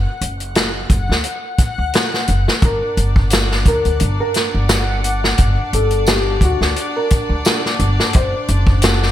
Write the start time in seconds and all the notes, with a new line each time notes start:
Already playing: F#5
0.21 F#1, closed hi-hat
0.40 closed hi-hat
0.55 snare, closed hi-hat
0.90 F#1, kick, closed hi-hat
1.09 D2, snare
1.24 closed hi-hat
1.58 kick, closed hi-hat
1.78 D2
1.93 snare, closed hi-hat
2.14 snare
2.28 F#1, closed hi-hat
2.48 snare
2.62 G1 D4 A#4 D5, kick, closed hi-hat
2.97 G1, closed hi-hat
3.16 kick
3.30 snare, closed hi-hat, tambourine
3.52 snare
3.66 D2 A#4, kick, closed hi-hat
3.85 D2, closed hi-hat
4.00 G1, closed hi-hat
4.20 A#4
4.34 snare, closed hi-hat
4.54 G1
4.69 snare, closed hi-hat, tambourine
5.04 closed hi-hat
5.24 snare
5.38 G1, kick, closed hi-hat
5.73 G1 A4, closed hi-hat
5.90 closed hi-hat
6.07 G4, snare, closed hi-hat, tambourine
6.41 D2 F#4, kick, closed hi-hat
6.61 D2, snare
6.76 closed hi-hat
6.96 A#4
7.10 kick, closed hi-hat
7.29 D2
7.45 snare, closed hi-hat, tambourine
7.66 snare
7.79 G1, closed hi-hat
8.00 snare
8.13 F#1 C5, kick, closed hi-hat
8.48 F#1, closed hi-hat
8.67 kick
8.82 snare, closed hi-hat, tambourine
9.03 snare